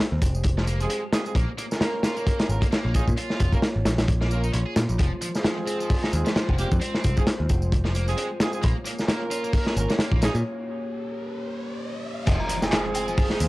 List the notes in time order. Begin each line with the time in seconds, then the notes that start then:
Already playing: G#3 G4 C5
0.00 snare
0.12 D#2
0.22 F1, kick, closed hi-hat, tambourine
0.35 tambourine
0.44 kick, closed hi-hat, tambourine
0.58 F3, snare
0.67 A#3, closed hi-hat, tambourine
0.80 F3 G#3 C4 F4 G#4, closed hi-hat, tambourine
0.90 G#3, closed hi-hat, tambourine
1.13 G#3 C4 F4 G#4, snare, closed hi-hat, tambourine
1.25 G#3 C4 F4 G#4, tambourine
1.35 A#1 A#3 F4 C#5, kick, closed hi-hat, tambourine
1.58 A#3, closed hi-hat, tambourine
1.71 A#3 C#4 F4 A#4, snare, tambourine
1.80 A#3, snare, closed hi-hat, tambourine
2.03 F4, snare, closed hi-hat, tambourine
2.16 A#3, tambourine
2.27 kick, closed hi-hat, tambourine
2.39 G#4, snare, closed hi-hat
2.49 G#1 A#3 C#4 F4 A#4, tambourine
2.62 A#3, kick, closed hi-hat, tambourine
2.72 A#3, snare, closed hi-hat, tambourine
2.84 A#1 A#3
2.94 G#3 C#4 D#4 F4 G#4, kick, closed hi-hat, tambourine
3.07 A#2, kick, tambourine
3.17 F4, closed hi-hat, tambourine
3.30 snare
3.40 F1, kick, closed hi-hat, tambourine
3.52 A#3 C#4 F4 A#4, kick, tambourine
3.62 snare, closed hi-hat, tambourine
3.76 G#1
3.85 A#1, snare, closed hi-hat, tambourine
3.98 snare, closed hi-hat, tambourine
4.08 kick, closed hi-hat, tambourine
4.21 A#3, snare
4.31 A#3 C#4 F4 A#4, tambourine
4.44 D#4, tambourine
4.53 A#1 C#4, closed hi-hat, tambourine
4.66 G#4
4.76 A#2, snare, closed hi-hat, tambourine
4.89 A#1, tambourine
4.99 F1 F3 G#3 C5, kick, closed hi-hat, tambourine
5.22 F3, closed hi-hat, tambourine
5.35 G#3 C4 F4 G#4, snare, tambourine
5.44 F3, snare, closed hi-hat, tambourine
5.67 C4, closed hi-hat, tambourine
5.80 F3, tambourine
5.90 kick, open hi-hat, tambourine
6.03 D#4, snare
6.13 D#2 G#3 C4 F4 G#4, closed hi-hat, tambourine
6.26 F3, snare, tambourine
6.35 F3, snare, closed hi-hat, tambourine
6.48 F1 F3, kick
6.58 G3 A#3 C4 F4 G4, closed hi-hat, tambourine
6.71 F2, kick, tambourine
6.81 C4, closed hi-hat, tambourine
6.95 snare
7.04 C2, kick, closed hi-hat, tambourine
7.16 F3 G#3 C4 F4 G#4, kick, tambourine
7.27 snare, closed hi-hat, tambourine
7.40 D#2
7.49 F1, kick, closed hi-hat, tambourine
7.62 tambourine
7.72 kick, closed hi-hat, tambourine
7.85 F3, snare
7.95 A#3, closed hi-hat, tambourine
8.07 F3 G#3 C4 F4 G#4, closed hi-hat, tambourine
8.17 G#3, closed hi-hat, tambourine
8.40 G#3 C4 F4 G#4, snare, closed hi-hat, tambourine
8.53 G#3 C4 F4 G#4, tambourine
8.62 A#1 A#3 F4 C#5, kick, closed hi-hat, tambourine, riser
8.85 A#3, closed hi-hat, tambourine
8.99 A#3 C#4 F4 A#4, snare, tambourine
9.08 A#3, snare, closed hi-hat, tambourine
9.31 F4, closed hi-hat, tambourine
9.44 A#3, tambourine
9.53 kick, open hi-hat, tambourine
9.66 G#4, snare
9.77 G#1 A#3 C#4 F4 A#4, closed hi-hat, tambourine
9.89 A#3, snare, tambourine
9.99 A#3, snare, closed hi-hat, tambourine
10.12 A#1 A#3, kick
10.22 G#3 C#4 D#4 F4 G#4, snare, closed hi-hat, tambourine
10.35 A#2, tambourine
10.44 G4
12.27 F1 F3 G#3 F4 C5, kick, closed hi-hat, crash, tambourine, impact
12.40 A#5
12.49 F3, closed hi-hat, open hi-hat, tambourine
12.62 G#3 C4 F4 G#4 G#5, snare, tambourine
12.72 F3, snare, clap, closed hi-hat, tambourine
12.94 C4 G#5, closed hi-hat, open hi-hat, tambourine
13.07 F3, tambourine
13.18 kick, open hi-hat, tambourine
13.30 D#4, snare
13.40 D#2 G#3 C4 F4 G#4, closed hi-hat, open hi-hat, tambourine